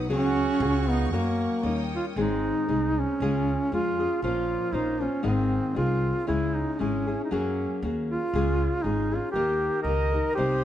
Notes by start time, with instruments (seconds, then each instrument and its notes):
Already playing: violin section B4 F#5
0.10 upright bass C#2, nylon-string guitar C#3 F#3 C#4 F#4 G#4, duduk C#4, trumpet F#4, violin section G#4 C#6
0.60 upright bass C#2, nylon-string guitar G#3 C#4 F4 G#4, violin section F5
0.88 duduk B3, trumpet D#4
1.12 upright bass F#2, nylon-string guitar F#3 C#4 F#4 A#4, duduk A#3, trumpet C#4, violin section A#4 F#5
1.63 upright bass D#2, nylon-string guitar G3 C#4 D#4 A#4, violin section C#5 G5 D#6
1.95 duduk F4
2.16 upright bass G#1, nylon-string guitar G#2 D#3 G#3 C4 D#4 G#4, duduk D#4
2.68 upright bass C2, nylon-string guitar G#3 C4 D#4 G#4
2.99 duduk C#4
3.20 upright bass C#2, nylon-string guitar C#3 G#3 C#4 F4 G#4
3.72 upright bass F2, nylon-string guitar G#3 C#4 F4 G#4, duduk F4
3.99 nylon-string guitar C#4 F4 G#4
4.22 upright bass A#1, nylon-string guitar A#2 F3 A#3 C#4 F4 C5, duduk F4
4.72 upright bass A#1, nylon-string guitar A#3 C#4 F4 C5, duduk D#4
5.00 nylon-string guitar A#3 C#4 F4 C5, duduk C#4
5.23 upright bass G#1, nylon-string guitar G#2 D#3 A#3 C4 D#4 G#4, duduk C4
5.75 upright bass C2, nylon-string guitar A#3 C4 D#4 G#4, duduk F4
6.27 upright bass C#2, nylon-string guitar C#3 G#3 C#4 E4 G#4, duduk E4
6.56 duduk D#4
6.74 duduk D#4
6.79 upright bass G#1, nylon-string guitar G#3 C#4 E4 G#4, duduk C#4
7.07 nylon-string guitar C#4 E4 G#4
7.24 duduk D#4
7.31 upright bass F#2, nylon-string guitar F#3 A#3 C#4 F#4 G#4, duduk C#4
7.82 upright bass D#2, nylon-string guitar A#3 C#4 F#4 G#4
8.11 duduk F4
8.34 upright bass C#2, nylon-string guitar C#3 G#3 C#4 F4 G#4
8.83 upright bass G#1, nylon-string guitar G#3 C#4 F4 G#4, duduk D#4
9.12 nylon-string guitar C#4 F4 G#4, duduk F4
9.31 upright bass D#2, nylon-string guitar D#3 A#3, duduk G4, trumpet A#4
9.35 nylon-string guitar D#4 G4 A#4
9.82 upright bass C#2, duduk A#4, trumpet D#5
9.87 nylon-string guitar A#3 D#4 G4 A#4
10.12 nylon-string guitar D#4 G4 A#4
10.34 upright bass C2, nylon-string guitar C3 G3, duduk G4, trumpet C5
10.38 nylon-string guitar C4 D#4 G4 C5, violin section C5 G5 D#6